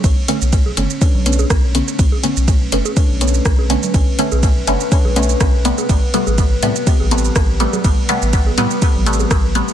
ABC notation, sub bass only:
X:1
M:4/4
L:1/16
Q:"Swing 16ths" 1/4=123
K:Bm
V:1 name="Sub bass" clef=bass
B,,, z2 B,,,2 z F,,, z2 B,,,2 z B,,,2 z2 | B,,, z2 B,,,2 z F,,, z2 B,,,2 z B,,,2 z2 | B,,, z2 B,,,2 z F,,, z2 B,,,2 z B,,,2 z2 | A,,, z2 A,,,2 z A,, z2 A,,,2 z A,,,2 z2 |
A,,, z2 A,,,2 z A,, z2 A,,,2 z A,,,2 z2 |]